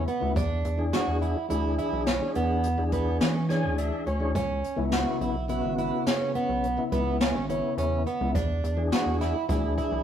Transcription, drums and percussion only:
0.07 closed hi-hat
0.36 kick, closed hi-hat
0.65 closed hi-hat
0.93 snare, closed hi-hat
1.22 closed hi-hat
1.50 closed hi-hat
1.78 closed hi-hat
2.06 snare, closed hi-hat
2.35 closed hi-hat
2.63 closed hi-hat
2.92 kick, closed hi-hat
3.21 snare, closed hi-hat
3.50 snare, closed hi-hat
3.78 closed hi-hat
4.07 closed hi-hat
4.35 kick, closed hi-hat
4.64 closed hi-hat
4.92 snare, closed hi-hat
5.21 closed hi-hat
5.49 closed hi-hat
5.78 closed hi-hat
6.07 snare, closed hi-hat
6.35 closed hi-hat
6.64 closed hi-hat
6.92 kick, closed hi-hat
7.21 snare, closed hi-hat
7.50 closed hi-hat
7.78 closed hi-hat
8.07 closed hi-hat
8.35 kick, closed hi-hat
8.64 closed hi-hat
8.92 snare, closed hi-hat
9.21 snare, closed hi-hat
9.49 kick, closed hi-hat
9.78 kick, closed hi-hat

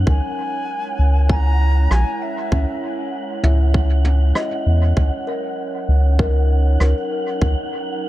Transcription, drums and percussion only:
0.07 kick
1.29 kick
1.91 cross-stick
2.52 kick
3.44 mid tom
3.74 kick
4.05 mid tom
4.35 cross-stick
4.97 kick
6.19 kick
6.80 cross-stick
7.42 kick

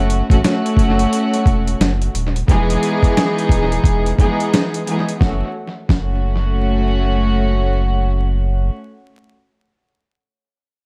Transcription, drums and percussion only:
0.10 closed hi-hat
0.30 kick, closed hi-hat
0.44 snare, closed hi-hat
0.66 closed hi-hat
0.77 kick, closed hi-hat
0.99 closed hi-hat
1.13 closed hi-hat
1.34 closed hi-hat
1.46 kick, closed hi-hat
1.68 closed hi-hat
1.81 snare, closed hi-hat
2.02 closed hi-hat
2.15 closed hi-hat
2.36 closed hi-hat
2.48 kick, closed hi-hat
2.70 closed hi-hat
2.83 closed hi-hat
3.03 kick, closed hi-hat
3.17 snare, closed hi-hat
3.39 closed hi-hat
3.49 kick, closed hi-hat
3.72 closed hi-hat
3.84 kick, closed hi-hat
4.06 closed hi-hat
4.19 kick, closed hi-hat
4.40 closed hi-hat
4.54 snare, closed hi-hat
4.74 closed hi-hat
4.87 closed hi-hat
5.09 closed hi-hat
5.21 kick, snare
5.89 kick, snare

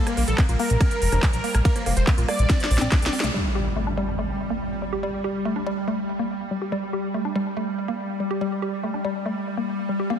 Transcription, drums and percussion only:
0.07 cross-stick, closed hi-hat
0.17 open hi-hat
0.28 closed hi-hat
0.38 kick, cross-stick, clap, closed hi-hat, ride
0.49 closed hi-hat
0.59 open hi-hat
0.70 closed hi-hat
0.81 kick, cross-stick, closed hi-hat, ride
0.91 closed hi-hat
1.02 open hi-hat
1.12 cross-stick, closed hi-hat
1.23 kick, clap, closed hi-hat, ride
1.33 closed hi-hat
1.44 open hi-hat
1.55 cross-stick, closed hi-hat
1.65 kick, closed hi-hat, ride
1.76 closed hi-hat
1.86 cross-stick, open hi-hat
1.97 closed hi-hat
2.07 kick, clap, closed hi-hat, ride
2.18 closed hi-hat
2.28 cross-stick, open hi-hat
2.39 closed hi-hat
2.50 kick, snare, closed hi-hat, ride
2.60 snare, closed hi-hat
2.71 open hi-hat
2.78 snare, closed hi-hat
2.92 kick, snare, clap, closed hi-hat, ride
3.02 snare, closed hi-hat
3.13 open hi-hat
3.20 snare, closed hi-hat
3.34 crash

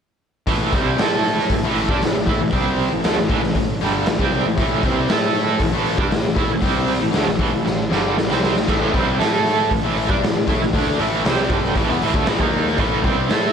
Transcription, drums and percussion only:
0.47 kick, open hi-hat
0.73 kick, open hi-hat
0.98 snare, open hi-hat
1.24 open hi-hat
1.39 snare
1.50 kick, open hi-hat
1.75 open hi-hat
1.89 kick
2.02 snare, open hi-hat
2.27 kick, open hi-hat
2.53 kick, open hi-hat
2.78 open hi-hat
3.04 snare, open hi-hat
3.29 kick, open hi-hat
3.43 snare
3.55 kick, open hi-hat
3.80 open hi-hat
4.06 snare, open hi-hat
4.19 kick
4.32 open hi-hat
4.58 kick, open hi-hat
4.83 kick, open hi-hat
5.09 snare, open hi-hat
5.35 open hi-hat
5.60 kick, open hi-hat
5.86 open hi-hat
5.98 kick
6.11 snare, open hi-hat
6.37 kick, open hi-hat
6.62 kick, open hi-hat
6.87 open hi-hat
7.13 snare, open hi-hat
7.39 kick, open hi-hat
7.66 snare
7.92 snare
8.17 snare
8.31 snare
8.44 snare
8.56 snare
8.68 kick, open hi-hat, crash
8.94 kick, open hi-hat
9.20 snare, open hi-hat
9.47 open hi-hat
9.71 kick, open hi-hat
9.98 open hi-hat
10.09 kick
10.23 snare, open hi-hat
10.48 kick, open hi-hat
10.62 snare
10.74 kick, open hi-hat
10.99 open hi-hat
11.25 snare, open hi-hat
11.50 kick, open hi-hat
11.64 snare
11.76 kick, open hi-hat
12.02 open hi-hat
12.14 kick
12.26 snare, open hi-hat
12.40 kick
12.53 open hi-hat
12.67 snare
12.78 kick, open hi-hat
13.04 kick, open hi-hat
13.30 snare, open hi-hat

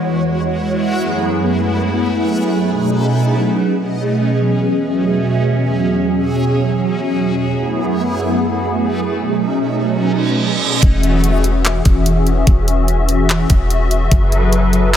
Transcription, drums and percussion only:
10.83 kick, closed hi-hat
11.03 closed hi-hat
11.24 closed hi-hat
11.44 closed hi-hat
11.65 clap, closed hi-hat
11.85 kick, closed hi-hat
12.06 closed hi-hat
12.27 closed hi-hat
12.47 kick, closed hi-hat
12.68 closed hi-hat
12.88 closed hi-hat
13.09 closed hi-hat
13.29 clap, closed hi-hat
13.50 kick, closed hi-hat
13.70 closed hi-hat
13.91 closed hi-hat
14.11 kick, closed hi-hat
14.32 closed hi-hat
14.53 closed hi-hat
14.73 closed hi-hat

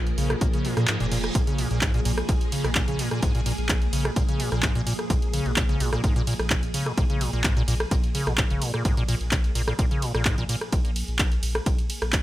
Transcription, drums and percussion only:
0.07 closed hi-hat
0.18 open hi-hat
0.30 cross-stick, closed hi-hat
0.41 kick, closed hi-hat
0.53 closed hi-hat
0.65 open hi-hat
0.77 cross-stick, closed hi-hat
0.88 clap, closed hi-hat
1.00 closed hi-hat
1.12 open hi-hat
1.24 cross-stick, closed hi-hat
1.35 kick, closed hi-hat, ride
1.47 closed hi-hat
1.58 open hi-hat, ride
1.71 closed hi-hat
1.81 kick, clap, closed hi-hat, ride
1.94 closed hi-hat
2.05 open hi-hat, ride
2.18 cross-stick, closed hi-hat
2.29 kick, closed hi-hat, ride
2.41 closed hi-hat
2.52 open hi-hat, ride
2.64 cross-stick, closed hi-hat
2.75 kick, clap, closed hi-hat, ride
2.88 closed hi-hat
2.99 open hi-hat, ride
3.11 cross-stick, closed hi-hat
3.23 kick, closed hi-hat, ride
3.35 closed hi-hat
3.46 open hi-hat, ride
3.58 closed hi-hat
3.69 kick, clap, closed hi-hat, ride
3.82 closed hi-hat
3.93 open hi-hat, ride
4.05 cross-stick, closed hi-hat
4.16 kick, closed hi-hat, ride
4.29 closed hi-hat
4.40 open hi-hat, ride
4.52 cross-stick, closed hi-hat
4.63 kick, clap, closed hi-hat, ride
4.75 closed hi-hat
4.87 open hi-hat, ride
4.99 cross-stick, closed hi-hat
5.10 kick, closed hi-hat, ride
5.22 closed hi-hat
5.33 open hi-hat, ride
5.46 closed hi-hat
5.56 kick, clap, closed hi-hat, ride
5.69 closed hi-hat
5.80 open hi-hat, ride
5.93 cross-stick, closed hi-hat
6.04 kick, closed hi-hat, ride
6.16 closed hi-hat
6.27 open hi-hat, ride
6.39 cross-stick, closed hi-hat
6.50 kick, clap, closed hi-hat, ride
6.63 closed hi-hat
6.74 open hi-hat, ride
6.86 cross-stick, closed hi-hat
6.98 kick, closed hi-hat, ride
7.10 closed hi-hat
7.21 open hi-hat, ride
7.33 closed hi-hat
7.44 kick, clap, closed hi-hat, ride
7.57 closed hi-hat
7.68 open hi-hat, ride
7.80 cross-stick, closed hi-hat
7.91 kick, closed hi-hat, ride
8.04 closed hi-hat
8.15 open hi-hat, ride
8.27 cross-stick, closed hi-hat
8.38 kick, clap, closed hi-hat, ride
8.50 closed hi-hat
8.62 open hi-hat, ride
8.74 cross-stick, closed hi-hat
8.85 kick, closed hi-hat, ride
8.97 closed hi-hat
9.09 open hi-hat, ride
9.21 closed hi-hat
9.31 kick, clap, closed hi-hat, ride
9.44 closed hi-hat
9.55 open hi-hat, ride
9.68 cross-stick, closed hi-hat
9.79 kick, closed hi-hat, ride
9.91 closed hi-hat
10.02 open hi-hat, ride
10.15 cross-stick, closed hi-hat
10.25 kick, clap, closed hi-hat, ride
10.38 closed hi-hat
10.49 open hi-hat, ride
10.61 cross-stick, closed hi-hat
10.72 kick, closed hi-hat, ride
10.85 closed hi-hat
10.96 open hi-hat, ride
11.08 closed hi-hat
11.19 kick, clap, closed hi-hat, ride
11.32 closed hi-hat
11.43 open hi-hat, ride
11.55 cross-stick, closed hi-hat
11.66 kick, closed hi-hat, ride
11.79 closed hi-hat
11.90 open hi-hat, ride
12.02 cross-stick, closed hi-hat
12.13 kick, clap, closed hi-hat, ride

